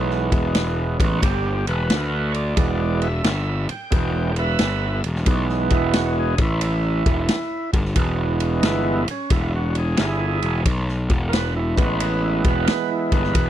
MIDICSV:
0, 0, Header, 1, 5, 480
1, 0, Start_track
1, 0, Tempo, 673401
1, 1829, Time_signature, 4, 2, 24, 8
1, 9619, End_track
2, 0, Start_track
2, 0, Title_t, "Tonewheel organ"
2, 0, Program_c, 0, 16
2, 0, Note_on_c, 0, 52, 56
2, 0, Note_on_c, 0, 56, 51
2, 0, Note_on_c, 0, 59, 59
2, 700, Note_off_c, 0, 52, 0
2, 700, Note_off_c, 0, 59, 0
2, 704, Note_off_c, 0, 56, 0
2, 709, Note_on_c, 0, 52, 49
2, 709, Note_on_c, 0, 59, 55
2, 713, Note_on_c, 0, 56, 42
2, 849, Note_on_c, 0, 66, 69
2, 854, Note_off_c, 0, 52, 0
2, 854, Note_off_c, 0, 59, 0
2, 856, Note_off_c, 0, 56, 0
2, 884, Note_off_c, 0, 66, 0
2, 884, Note_on_c, 0, 67, 93
2, 1184, Note_off_c, 0, 67, 0
2, 1201, Note_on_c, 0, 71, 83
2, 1653, Note_on_c, 0, 73, 58
2, 1660, Note_off_c, 0, 71, 0
2, 1672, Note_off_c, 0, 73, 0
2, 1680, Note_on_c, 0, 74, 79
2, 1826, Note_on_c, 0, 52, 55
2, 1832, Note_on_c, 0, 56, 50
2, 1836, Note_on_c, 0, 59, 62
2, 2139, Note_off_c, 0, 74, 0
2, 2164, Note_on_c, 0, 76, 83
2, 2191, Note_off_c, 0, 52, 0
2, 2194, Note_off_c, 0, 56, 0
2, 2196, Note_off_c, 0, 59, 0
2, 2621, Note_off_c, 0, 76, 0
2, 2643, Note_on_c, 0, 79, 82
2, 2783, Note_on_c, 0, 56, 43
2, 2785, Note_on_c, 0, 52, 46
2, 2787, Note_on_c, 0, 59, 51
2, 3075, Note_off_c, 0, 56, 0
2, 3076, Note_off_c, 0, 52, 0
2, 3077, Note_off_c, 0, 59, 0
2, 3101, Note_off_c, 0, 79, 0
2, 3126, Note_on_c, 0, 71, 87
2, 3132, Note_on_c, 0, 76, 97
2, 3569, Note_off_c, 0, 71, 0
2, 3586, Note_off_c, 0, 76, 0
2, 3752, Note_on_c, 0, 52, 53
2, 3757, Note_on_c, 0, 56, 50
2, 3762, Note_on_c, 0, 59, 61
2, 4090, Note_on_c, 0, 64, 98
2, 4236, Note_off_c, 0, 64, 0
2, 4250, Note_on_c, 0, 66, 93
2, 4396, Note_off_c, 0, 66, 0
2, 4416, Note_on_c, 0, 68, 95
2, 4521, Note_off_c, 0, 52, 0
2, 4523, Note_off_c, 0, 56, 0
2, 4526, Note_off_c, 0, 59, 0
2, 4559, Note_off_c, 0, 68, 0
2, 4574, Note_on_c, 0, 64, 97
2, 5495, Note_off_c, 0, 64, 0
2, 5670, Note_on_c, 0, 52, 55
2, 5672, Note_on_c, 0, 56, 51
2, 5676, Note_on_c, 0, 59, 59
2, 6137, Note_on_c, 0, 63, 70
2, 6167, Note_on_c, 0, 64, 97
2, 6170, Note_off_c, 0, 63, 0
2, 6440, Note_off_c, 0, 52, 0
2, 6441, Note_off_c, 0, 56, 0
2, 6443, Note_off_c, 0, 59, 0
2, 6470, Note_off_c, 0, 64, 0
2, 6493, Note_on_c, 0, 61, 95
2, 6639, Note_off_c, 0, 61, 0
2, 6644, Note_on_c, 0, 64, 96
2, 6794, Note_off_c, 0, 64, 0
2, 6814, Note_on_c, 0, 66, 94
2, 6959, Note_off_c, 0, 66, 0
2, 6976, Note_on_c, 0, 68, 92
2, 7120, Note_off_c, 0, 68, 0
2, 7124, Note_on_c, 0, 64, 92
2, 7130, Note_on_c, 0, 68, 101
2, 7570, Note_off_c, 0, 64, 0
2, 7588, Note_off_c, 0, 68, 0
2, 8046, Note_on_c, 0, 70, 72
2, 8076, Note_on_c, 0, 71, 110
2, 8082, Note_off_c, 0, 70, 0
2, 8230, Note_off_c, 0, 71, 0
2, 8243, Note_on_c, 0, 64, 89
2, 8383, Note_on_c, 0, 52, 53
2, 8389, Note_on_c, 0, 56, 50
2, 8393, Note_off_c, 0, 64, 0
2, 8393, Note_on_c, 0, 59, 59
2, 8401, Note_on_c, 0, 71, 88
2, 8552, Note_off_c, 0, 71, 0
2, 8561, Note_on_c, 0, 71, 82
2, 8712, Note_off_c, 0, 71, 0
2, 8730, Note_on_c, 0, 64, 84
2, 8877, Note_off_c, 0, 64, 0
2, 8890, Note_on_c, 0, 71, 86
2, 9014, Note_on_c, 0, 70, 69
2, 9037, Note_off_c, 0, 71, 0
2, 9046, Note_on_c, 0, 71, 98
2, 9048, Note_off_c, 0, 70, 0
2, 9195, Note_off_c, 0, 71, 0
2, 9206, Note_on_c, 0, 64, 95
2, 9355, Note_off_c, 0, 64, 0
2, 9366, Note_on_c, 0, 71, 94
2, 9497, Note_on_c, 0, 70, 68
2, 9515, Note_off_c, 0, 71, 0
2, 9531, Note_off_c, 0, 70, 0
2, 9533, Note_on_c, 0, 71, 95
2, 9619, Note_off_c, 0, 52, 0
2, 9619, Note_off_c, 0, 56, 0
2, 9619, Note_off_c, 0, 59, 0
2, 9619, Note_off_c, 0, 71, 0
2, 9619, End_track
3, 0, Start_track
3, 0, Title_t, "Picked electric bass"
3, 0, Program_c, 1, 34
3, 0, Note_on_c, 1, 35, 89
3, 204, Note_off_c, 1, 35, 0
3, 229, Note_on_c, 1, 28, 95
3, 679, Note_off_c, 1, 28, 0
3, 711, Note_on_c, 1, 33, 89
3, 860, Note_off_c, 1, 33, 0
3, 875, Note_on_c, 1, 31, 94
3, 1167, Note_off_c, 1, 31, 0
3, 1193, Note_on_c, 1, 28, 94
3, 1341, Note_off_c, 1, 28, 0
3, 1354, Note_on_c, 1, 38, 80
3, 1803, Note_off_c, 1, 38, 0
3, 1835, Note_on_c, 1, 28, 83
3, 2284, Note_off_c, 1, 28, 0
3, 2313, Note_on_c, 1, 31, 94
3, 2606, Note_off_c, 1, 31, 0
3, 2795, Note_on_c, 1, 28, 93
3, 3245, Note_off_c, 1, 28, 0
3, 3283, Note_on_c, 1, 31, 89
3, 3572, Note_off_c, 1, 31, 0
3, 3595, Note_on_c, 1, 28, 81
3, 3743, Note_off_c, 1, 28, 0
3, 3754, Note_on_c, 1, 35, 89
3, 4048, Note_off_c, 1, 35, 0
3, 4071, Note_on_c, 1, 28, 97
3, 4522, Note_off_c, 1, 28, 0
3, 4552, Note_on_c, 1, 33, 92
3, 5002, Note_off_c, 1, 33, 0
3, 5032, Note_on_c, 1, 28, 99
3, 5182, Note_off_c, 1, 28, 0
3, 5513, Note_on_c, 1, 31, 103
3, 5663, Note_off_c, 1, 31, 0
3, 5673, Note_on_c, 1, 28, 91
3, 6124, Note_off_c, 1, 28, 0
3, 6150, Note_on_c, 1, 31, 93
3, 6446, Note_off_c, 1, 31, 0
3, 6633, Note_on_c, 1, 28, 93
3, 7085, Note_off_c, 1, 28, 0
3, 7114, Note_on_c, 1, 31, 89
3, 7409, Note_off_c, 1, 31, 0
3, 7430, Note_on_c, 1, 28, 83
3, 7582, Note_off_c, 1, 28, 0
3, 7595, Note_on_c, 1, 35, 90
3, 7889, Note_off_c, 1, 35, 0
3, 7912, Note_on_c, 1, 28, 96
3, 8363, Note_off_c, 1, 28, 0
3, 8397, Note_on_c, 1, 33, 85
3, 8845, Note_off_c, 1, 33, 0
3, 8873, Note_on_c, 1, 28, 97
3, 9023, Note_off_c, 1, 28, 0
3, 9352, Note_on_c, 1, 31, 95
3, 9503, Note_off_c, 1, 31, 0
3, 9518, Note_on_c, 1, 28, 89
3, 9619, Note_off_c, 1, 28, 0
3, 9619, End_track
4, 0, Start_track
4, 0, Title_t, "Muted picked electric bass strokes"
4, 2637, Note_on_c, 9, 29, 36
4, 2708, Note_off_c, 9, 29, 0
4, 6474, Note_on_c, 9, 29, 40
4, 6546, Note_off_c, 9, 29, 0
4, 9619, End_track
5, 0, Start_track
5, 0, Title_t, "Drums"
5, 73, Note_on_c, 9, 38, 31
5, 145, Note_off_c, 9, 38, 0
5, 228, Note_on_c, 9, 36, 104
5, 229, Note_on_c, 9, 51, 68
5, 300, Note_off_c, 9, 36, 0
5, 300, Note_off_c, 9, 51, 0
5, 389, Note_on_c, 9, 51, 94
5, 393, Note_on_c, 9, 38, 105
5, 460, Note_off_c, 9, 51, 0
5, 464, Note_off_c, 9, 38, 0
5, 710, Note_on_c, 9, 36, 101
5, 714, Note_on_c, 9, 51, 80
5, 782, Note_off_c, 9, 36, 0
5, 785, Note_off_c, 9, 51, 0
5, 873, Note_on_c, 9, 36, 105
5, 874, Note_on_c, 9, 51, 99
5, 944, Note_off_c, 9, 36, 0
5, 946, Note_off_c, 9, 51, 0
5, 1191, Note_on_c, 9, 51, 67
5, 1263, Note_off_c, 9, 51, 0
5, 1353, Note_on_c, 9, 51, 87
5, 1356, Note_on_c, 9, 38, 106
5, 1424, Note_off_c, 9, 51, 0
5, 1428, Note_off_c, 9, 38, 0
5, 1670, Note_on_c, 9, 51, 62
5, 1742, Note_off_c, 9, 51, 0
5, 1830, Note_on_c, 9, 51, 89
5, 1832, Note_on_c, 9, 36, 99
5, 1902, Note_off_c, 9, 51, 0
5, 1904, Note_off_c, 9, 36, 0
5, 2149, Note_on_c, 9, 51, 61
5, 2221, Note_off_c, 9, 51, 0
5, 2311, Note_on_c, 9, 51, 82
5, 2315, Note_on_c, 9, 38, 106
5, 2382, Note_off_c, 9, 51, 0
5, 2386, Note_off_c, 9, 38, 0
5, 2629, Note_on_c, 9, 51, 71
5, 2700, Note_off_c, 9, 51, 0
5, 2792, Note_on_c, 9, 51, 88
5, 2794, Note_on_c, 9, 36, 105
5, 2863, Note_off_c, 9, 51, 0
5, 2865, Note_off_c, 9, 36, 0
5, 3108, Note_on_c, 9, 51, 66
5, 3179, Note_off_c, 9, 51, 0
5, 3269, Note_on_c, 9, 51, 90
5, 3273, Note_on_c, 9, 38, 102
5, 3340, Note_off_c, 9, 51, 0
5, 3344, Note_off_c, 9, 38, 0
5, 3591, Note_on_c, 9, 51, 64
5, 3662, Note_off_c, 9, 51, 0
5, 3673, Note_on_c, 9, 38, 32
5, 3745, Note_off_c, 9, 38, 0
5, 3749, Note_on_c, 9, 51, 90
5, 3754, Note_on_c, 9, 36, 99
5, 3821, Note_off_c, 9, 51, 0
5, 3826, Note_off_c, 9, 36, 0
5, 3913, Note_on_c, 9, 38, 34
5, 3984, Note_off_c, 9, 38, 0
5, 4065, Note_on_c, 9, 51, 67
5, 4071, Note_on_c, 9, 36, 93
5, 4136, Note_off_c, 9, 51, 0
5, 4142, Note_off_c, 9, 36, 0
5, 4230, Note_on_c, 9, 51, 95
5, 4233, Note_on_c, 9, 38, 107
5, 4301, Note_off_c, 9, 51, 0
5, 4305, Note_off_c, 9, 38, 0
5, 4548, Note_on_c, 9, 51, 73
5, 4552, Note_on_c, 9, 36, 109
5, 4619, Note_off_c, 9, 51, 0
5, 4623, Note_off_c, 9, 36, 0
5, 4712, Note_on_c, 9, 51, 95
5, 4783, Note_off_c, 9, 51, 0
5, 5032, Note_on_c, 9, 51, 69
5, 5033, Note_on_c, 9, 36, 100
5, 5103, Note_off_c, 9, 51, 0
5, 5104, Note_off_c, 9, 36, 0
5, 5192, Note_on_c, 9, 51, 97
5, 5196, Note_on_c, 9, 38, 101
5, 5263, Note_off_c, 9, 51, 0
5, 5267, Note_off_c, 9, 38, 0
5, 5513, Note_on_c, 9, 36, 107
5, 5513, Note_on_c, 9, 51, 72
5, 5584, Note_off_c, 9, 36, 0
5, 5584, Note_off_c, 9, 51, 0
5, 5595, Note_on_c, 9, 38, 31
5, 5666, Note_off_c, 9, 38, 0
5, 5670, Note_on_c, 9, 51, 97
5, 5675, Note_on_c, 9, 36, 97
5, 5742, Note_off_c, 9, 51, 0
5, 5746, Note_off_c, 9, 36, 0
5, 5988, Note_on_c, 9, 51, 70
5, 6059, Note_off_c, 9, 51, 0
5, 6150, Note_on_c, 9, 51, 87
5, 6153, Note_on_c, 9, 38, 110
5, 6221, Note_off_c, 9, 51, 0
5, 6225, Note_off_c, 9, 38, 0
5, 6470, Note_on_c, 9, 51, 74
5, 6541, Note_off_c, 9, 51, 0
5, 6630, Note_on_c, 9, 51, 86
5, 6633, Note_on_c, 9, 36, 107
5, 6701, Note_off_c, 9, 51, 0
5, 6705, Note_off_c, 9, 36, 0
5, 6950, Note_on_c, 9, 51, 65
5, 7021, Note_off_c, 9, 51, 0
5, 7108, Note_on_c, 9, 51, 81
5, 7112, Note_on_c, 9, 38, 104
5, 7179, Note_off_c, 9, 51, 0
5, 7183, Note_off_c, 9, 38, 0
5, 7430, Note_on_c, 9, 51, 63
5, 7501, Note_off_c, 9, 51, 0
5, 7594, Note_on_c, 9, 51, 85
5, 7595, Note_on_c, 9, 36, 103
5, 7666, Note_off_c, 9, 36, 0
5, 7666, Note_off_c, 9, 51, 0
5, 7757, Note_on_c, 9, 38, 33
5, 7829, Note_off_c, 9, 38, 0
5, 7909, Note_on_c, 9, 51, 61
5, 7911, Note_on_c, 9, 36, 95
5, 7980, Note_off_c, 9, 51, 0
5, 7982, Note_off_c, 9, 36, 0
5, 8076, Note_on_c, 9, 51, 87
5, 8079, Note_on_c, 9, 38, 101
5, 8147, Note_off_c, 9, 51, 0
5, 8151, Note_off_c, 9, 38, 0
5, 8393, Note_on_c, 9, 36, 109
5, 8397, Note_on_c, 9, 51, 73
5, 8464, Note_off_c, 9, 36, 0
5, 8469, Note_off_c, 9, 51, 0
5, 8555, Note_on_c, 9, 51, 97
5, 8626, Note_off_c, 9, 51, 0
5, 8870, Note_on_c, 9, 51, 70
5, 8871, Note_on_c, 9, 36, 107
5, 8941, Note_off_c, 9, 51, 0
5, 8943, Note_off_c, 9, 36, 0
5, 9034, Note_on_c, 9, 51, 92
5, 9037, Note_on_c, 9, 38, 102
5, 9105, Note_off_c, 9, 51, 0
5, 9109, Note_off_c, 9, 38, 0
5, 9350, Note_on_c, 9, 51, 74
5, 9352, Note_on_c, 9, 36, 102
5, 9421, Note_off_c, 9, 51, 0
5, 9423, Note_off_c, 9, 36, 0
5, 9435, Note_on_c, 9, 38, 30
5, 9506, Note_off_c, 9, 38, 0
5, 9513, Note_on_c, 9, 51, 96
5, 9515, Note_on_c, 9, 36, 104
5, 9585, Note_off_c, 9, 51, 0
5, 9586, Note_off_c, 9, 36, 0
5, 9619, End_track
0, 0, End_of_file